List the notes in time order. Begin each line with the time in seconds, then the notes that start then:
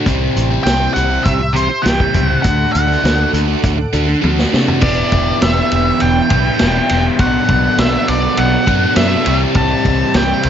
0.06 C2 C3 E3 G3 C4 G4 C5 E5 C6, kick, closed hi-hat
0.37 A1, closed hi-hat
0.50 G3 C4 G4
0.64 C2 C3 E3 G3 C4 G4 G5, snare, closed hi-hat
0.94 C2 E3 G3 C4 G4 F#5, closed hi-hat
1.09 G3 C4 G4
1.24 C2 E5, kick, closed hi-hat
1.39 muted overdriven electric guitar stroke
1.53 E3 G3 C4 G4 C5, closed hi-hat
1.68 muted overdriven electric guitar stroke
1.82 C2 C3 E3 G3 C4 G4 G5, snare, closed hi-hat
2.00 kick
2.12 C#2 E3 G3 C4 G4, kick, closed hi-hat
2.27 G3 C4 G4 F#5
2.42 D2 D3 A3 D4 F#4 A4 D5 F#5 D6, kick, closed hi-hat
2.72 D2 F#5, closed hi-hat
2.87 A3 D4 F#4
2.91 snare
3.02 D2 D3 A3 D4 F#4, snare, closed hi-hat
3.32 D2 D3 A3 D4 F#4, closed hi-hat
3.46 A3 D4 F#4
3.64 D2, kick, closed hi-hat
3.77 muted overdriven electric guitar stroke
3.93 D2 D3 A3 D4 F#4, closed hi-hat
4.08 muted overdriven electric guitar stroke
4.22 D2 D3 A3 D4 F#4, high tom
4.39 snare
4.53 C3 D3 A3 D4 F#4, snare
4.67 A3 D4 F#4, floor tom
4.81 E1 E3 B3 D4 E4 G4 B4 D5 E5 G5, kick, crash
5.12 E1, kick, ride
5.42 E1 E5, snare, ride
5.72 E1, ride
6.00 E1 G5, ride
6.29 B1 E3 B3 E4 G4, kick, ride
6.59 E1 E3 B3 E4 G4, snare, ride
6.89 E1, ride
7.19 B1 B2 F#3 B3 D4 F#4 A4 D5 F#5, kick, ride
7.49 B1, kick, ride
7.78 B1 E5, snare, ride
8.08 B1 D5, ride
8.37 B1 F#5, ride
8.66 F#2 B2 F#3 B3 D4 F#4, kick, ride
8.96 F#2 B2 F#3 B3 D4 F#4 E5, snare, ride
9.25 C2 C3 E3 G3 C4 G4 E5, ride
9.55 C2 A5, kick, ride
9.85 C2, kick, ride
10.14 C2 G5, snare, ride
10.43 C2, ride